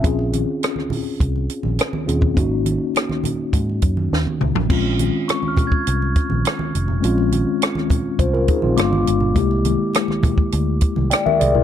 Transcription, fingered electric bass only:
X:1
M:4/4
L:1/16
Q:1/4=103
K:Bbm
V:1 name="Fingered electric bass" clef=bass
B,,,3 z4 z C,,2 z B,,, z2 E,,2 | A,,,3 z4 z A,,2 G,,2 E,, z D,, B,,, | B,,,3 z4 z C,,2 z B,,, z2 F,,,2 | B,,,3 z4 z C,,2 z B,,, =G,,,2 G,,,2 |
C,,3 z4 z =D,,2 z C,, z2 C,,2 |]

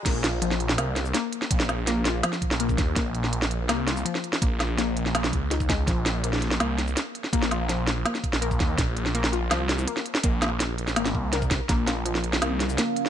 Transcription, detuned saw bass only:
X:1
M:4/4
L:1/16
Q:1/4=165
K:Bbm
V:1 name="Detuned saw bass" clef=bass
B,,,8 C,,4 z4 | B,,,8 z3 B,,,3 E,,2 | B,,,8 C,,4 z4 | B,,,8- B,,,2 D,,6 |
B,,,8 C,,4 z4 | B,,,8 z3 B,,,3 E,,2 | B,,,8 C,,4 z4 | B,,,8 A,,,2 C,,4- C,, z |
B,,,8 C,,4 z4 |]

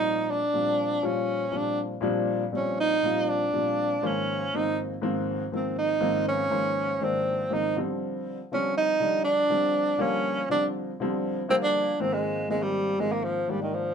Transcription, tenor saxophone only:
X:1
M:4/4
L:1/16
Q:1/4=120
K:Bbmix
V:1 name="Tenor saxophone"
E2 D6 _D4 =D2 z2 | z4 _D2 E4 =D6 | _D4 E2 z6 C2 E2- | E2 _D6 C4 E2 z2 |
z4 _D2 E4 =D6 | _D4 =D2 z6 C D3 | C A,3 A, G,3 A, B, F,2 G, E, F,2 |]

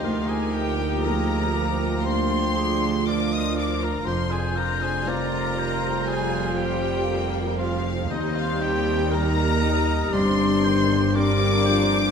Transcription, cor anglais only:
X:1
M:4/4
L:1/16
Q:1/4=59
K:Bbmix
V:1 name="Cor anglais"
F A G2 B4 c4 d e d B | c A B A B4 A2 G4 F z | E F G2 B4 c4 d4 |]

